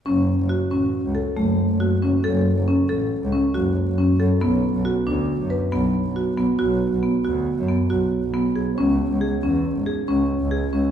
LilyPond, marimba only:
\new Staff \with { instrumentName = "Marimba" } { \time 5/4 \key fis \minor \tempo 4 = 138 cis'4 fis'8 cis'4 a'8 a4 fis'8 cis'8 | a'4 cis'8 a'4 cis'8 fis'4 cis'8 a'8 | b4 fis'8 d'4 b'8 b4 fis'8 b8 | fis'4 b8 fis'4 b8 fis'4 b8 gis'8 |
cis'4 gis'8 cis'4 gis'8 cis'4 gis'8 cis'8 | }